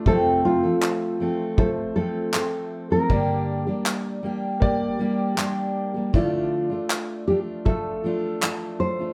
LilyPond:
<<
  \new Staff \with { instrumentName = "Nylon-string guitar" } { \time 4/4 \key f \major \tempo 4 = 79 a'8 f'4. a'8 a'4~ a'16 bes'16~ | bes'8. r2. r16 | f'4. g'8 a'4. c''8 | }
  \new Staff \with { instrumentName = "Grand piano" } { \time 4/4 \key f \major <a f' c''>4 r4 <a f' c''>4 r4 | <bes g' d''>4 r4 <bes g' d''>4 r4 | <a f' d''>4 r4 <a f' a'>4 r4 | }
  \new Staff \with { instrumentName = "Steel-string acoustic guitar" } { \time 4/4 \key f \major <f, c f a c' a'>8. <f a c' a'>8. <f a c' a'>4 <f a c' a'>8 <f a c' a'>8. <f a c' a'>16 | <g, d g bes d' g'>8. <g bes d' g'>8. <g bes d' g'>4 <g bes d' g'>8 <g bes d' g'>8. <g bes d' g'>16 | <d f a d' f'>8. <a d' f'>8. <f a d' f'>4 <f a d' f'>8 <f a d' f'>8. <a d' f'>16 | }
  \new DrumStaff \with { instrumentName = "Drums" } \drummode { \time 4/4 bd4 hc4 bd4 hc4 | bd4 hc4 bd4 hc4 | bd4 hc4 bd4 hc4 | }
>>